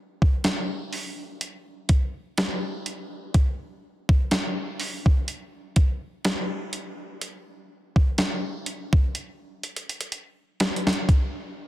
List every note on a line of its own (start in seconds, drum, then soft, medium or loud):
0.22 kick loud
0.44 snare loud
0.44 closed hi-hat medium
0.93 open hi-hat soft
1.41 closed hi-hat medium
1.89 kick medium
1.89 closed hi-hat medium
2.38 snare loud
2.38 closed hi-hat medium
2.86 closed hi-hat medium
3.34 kick loud
3.34 closed hi-hat medium
4.09 kick loud
4.31 snare loud
4.31 closed hi-hat medium
4.80 open hi-hat soft
5.06 kick loud
5.28 closed hi-hat medium
5.76 kick medium
5.76 closed hi-hat medium
6.25 snare loud
6.25 closed hi-hat medium
6.73 closed hi-hat medium
7.21 closed hi-hat medium
7.96 kick loud
8.18 snare loud
8.18 closed hi-hat medium
8.66 closed hi-hat medium
8.93 kick loud
9.15 closed hi-hat medium
9.63 closed hi-hat soft
9.76 closed hi-hat medium
9.89 closed hi-hat medium
10.01 closed hi-hat medium
10.12 closed hi-hat medium
10.60 snare loud
10.60 closed hi-hat medium
10.60 open hi-hat medium
10.76 closed hi-hat medium
10.87 snare medium
10.93 closed hi-hat medium
11.09 kick loud
11.09 closed hi-hat medium